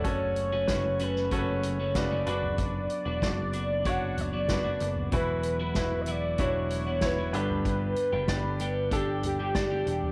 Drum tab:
HH |x-x-x-x-x-x-x-x-|x-x-x-x-x-x-x-x-|x-x-x-x-x-x-x-x-|x-x-x-x-x-x-x-x-|
SD |----o--o----o---|----o-------o---|----o-------o---|----o-------o---|
FT |---------------o|----------o----o|---------------o|----------o----o|
BD |o---o---o---o---|o---o---o---o---|o---o---o---o---|o---o---o---o---|